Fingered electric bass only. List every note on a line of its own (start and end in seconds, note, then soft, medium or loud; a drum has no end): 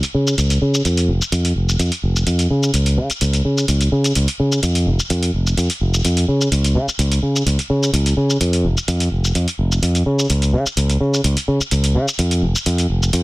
0.03 muted fingered electric bass stroke soft
0.14 0.33 C#3 medium
0.38 0.57 C#2 medium
0.62 0.81 C#3 medium
0.85 1.10 F2 medium
1.09 1.19 F1 medium
1.32 1.51 F2 medium
1.56 1.75 F1 medium
1.79 1.89 F2 medium
2.03 2.22 F1 medium
2.27 2.46 F2 loud
2.50 2.70 C#3 medium
2.74 2.99 C#2 medium
2.98 3.08 C#3 medium
3.10 muted fingered electric bass stroke soft
3.21 3.41 C#2 loud
3.45 3.64 C#3 medium
3.68 3.88 C#2 medium
3.92 4.11 C#3 medium
4.16 4.26 C#2 medium
4.40 4.59 C#3 medium
4.63 4.88 F2 medium
4.87 4.97 F1 medium
4.99 muted fingered electric bass stroke soft
5.10 5.29 F2 loud
5.34 5.53 F1 medium
5.57 5.67 F2 medium
5.81 6.00 F1 medium
6.05 6.24 F2 medium
6.28 6.48 C#3 medium
6.52 6.77 C#2 medium
6.75 6.85 C#3 medium
6.88 muted fingered electric bass stroke soft
6.99 7.18 C#2 loud
7.23 7.42 C#3 medium
7.46 7.56 C#2 medium
7.59 muted fingered electric bass stroke soft
7.70 7.89 C#3 medium
7.93 8.13 C#2 medium
8.17 8.36 C#3 medium
8.41 8.66 F2 medium
8.64 8.74 F1 medium
8.77 muted fingered electric bass stroke soft
8.88 9.07 F2 loud
9.12 9.31 F1 medium
9.35 9.45 F2 medium
9.59 9.78 F1 medium
9.82 10.02 F2 medium
10.06 10.25 C#3 medium
10.30 10.55 C#2 medium
10.53 10.63 C#3 medium
10.66 muted fingered electric bass stroke soft
10.77 10.96 C#2 medium
11.00 11.20 C#3 medium
11.24 11.34 C#2 medium
11.37 muted fingered electric bass stroke soft
11.48 11.58 C#3 medium
11.60 muted fingered electric bass stroke soft
11.72 11.97 C#2 medium
11.95 12.05 C#3 medium
12.19 12.44 F2 medium
12.43 12.52 F1 medium
12.55 muted fingered electric bass stroke soft
12.66 12.85 F2 medium
12.90 13.09 F1 medium
13.13 13.23 F2 medium